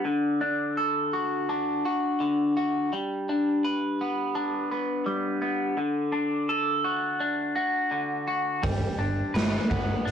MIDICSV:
0, 0, Header, 1, 4, 480
1, 0, Start_track
1, 0, Key_signature, 1, "major"
1, 0, Tempo, 715137
1, 41, Time_signature, 4, 2, 24, 8
1, 6787, End_track
2, 0, Start_track
2, 0, Title_t, "Clean electric guitar"
2, 0, Program_c, 0, 27
2, 0, Note_on_c, 0, 62, 58
2, 33, Note_on_c, 0, 50, 61
2, 273, Note_off_c, 0, 62, 0
2, 275, Note_on_c, 0, 62, 55
2, 519, Note_on_c, 0, 69, 57
2, 760, Note_on_c, 0, 66, 53
2, 998, Note_off_c, 0, 62, 0
2, 1001, Note_on_c, 0, 62, 58
2, 1236, Note_off_c, 0, 66, 0
2, 1239, Note_off_c, 0, 50, 0
2, 1244, Note_on_c, 0, 66, 57
2, 1478, Note_on_c, 0, 50, 56
2, 1715, Note_off_c, 0, 66, 0
2, 1721, Note_off_c, 0, 69, 0
2, 1723, Note_on_c, 0, 66, 56
2, 1961, Note_off_c, 0, 50, 0
2, 1963, Note_off_c, 0, 66, 0
2, 1965, Note_on_c, 0, 55, 60
2, 2206, Note_off_c, 0, 62, 0
2, 2209, Note_on_c, 0, 62, 54
2, 2446, Note_on_c, 0, 71, 65
2, 2692, Note_on_c, 0, 59, 55
2, 2918, Note_off_c, 0, 62, 0
2, 2920, Note_on_c, 0, 62, 57
2, 3156, Note_off_c, 0, 59, 0
2, 3164, Note_off_c, 0, 55, 0
2, 3164, Note_on_c, 0, 59, 58
2, 3397, Note_on_c, 0, 55, 57
2, 3628, Note_off_c, 0, 59, 0
2, 3636, Note_on_c, 0, 59, 56
2, 3644, Note_off_c, 0, 71, 0
2, 3872, Note_off_c, 0, 55, 0
2, 3875, Note_on_c, 0, 50, 63
2, 3879, Note_off_c, 0, 59, 0
2, 4107, Note_off_c, 0, 62, 0
2, 4109, Note_on_c, 0, 62, 57
2, 4356, Note_on_c, 0, 69, 60
2, 4594, Note_on_c, 0, 66, 54
2, 4832, Note_off_c, 0, 62, 0
2, 4834, Note_on_c, 0, 62, 57
2, 5063, Note_off_c, 0, 66, 0
2, 5071, Note_on_c, 0, 66, 60
2, 5078, Note_off_c, 0, 50, 0
2, 5310, Note_on_c, 0, 50, 57
2, 5546, Note_off_c, 0, 66, 0
2, 5554, Note_on_c, 0, 66, 54
2, 5558, Note_off_c, 0, 69, 0
2, 5788, Note_off_c, 0, 50, 0
2, 5790, Note_on_c, 0, 55, 57
2, 5798, Note_off_c, 0, 66, 0
2, 6029, Note_off_c, 0, 62, 0
2, 6032, Note_on_c, 0, 62, 53
2, 6270, Note_on_c, 0, 71, 59
2, 6510, Note_on_c, 0, 59, 55
2, 6745, Note_off_c, 0, 62, 0
2, 6747, Note_on_c, 0, 62, 57
2, 6787, Note_off_c, 0, 55, 0
2, 6787, Note_off_c, 0, 59, 0
2, 6787, Note_off_c, 0, 62, 0
2, 6787, Note_off_c, 0, 71, 0
2, 6787, End_track
3, 0, Start_track
3, 0, Title_t, "Picked electric bass"
3, 0, Program_c, 1, 34
3, 5793, Note_on_c, 1, 31, 78
3, 5946, Note_off_c, 1, 31, 0
3, 6031, Note_on_c, 1, 31, 65
3, 6184, Note_off_c, 1, 31, 0
3, 6270, Note_on_c, 1, 31, 74
3, 6424, Note_off_c, 1, 31, 0
3, 6521, Note_on_c, 1, 31, 71
3, 6671, Note_off_c, 1, 31, 0
3, 6754, Note_on_c, 1, 31, 67
3, 6787, Note_off_c, 1, 31, 0
3, 6787, End_track
4, 0, Start_track
4, 0, Title_t, "Drums"
4, 5794, Note_on_c, 9, 46, 41
4, 5796, Note_on_c, 9, 36, 88
4, 5861, Note_off_c, 9, 46, 0
4, 5863, Note_off_c, 9, 36, 0
4, 6276, Note_on_c, 9, 46, 42
4, 6284, Note_on_c, 9, 38, 98
4, 6343, Note_off_c, 9, 46, 0
4, 6351, Note_off_c, 9, 38, 0
4, 6518, Note_on_c, 9, 36, 76
4, 6585, Note_off_c, 9, 36, 0
4, 6762, Note_on_c, 9, 46, 41
4, 6787, Note_off_c, 9, 46, 0
4, 6787, End_track
0, 0, End_of_file